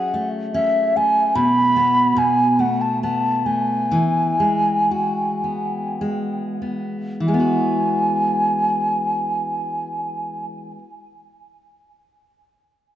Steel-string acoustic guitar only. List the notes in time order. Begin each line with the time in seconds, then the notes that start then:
Already playing: F#3 C#4 G#4
0.14 A3
0.54 C#4
0.96 A3
1.35 B2
1.76 B3
2.16 B2
2.59 A3
3.03 B3
3.46 A3
3.91 E3
4.40 G#3
4.91 F#4
5.44 B3
6.01 G#3
6.62 B3
7.20 E3
7.28 G#3
7.34 B3
7.40 F#4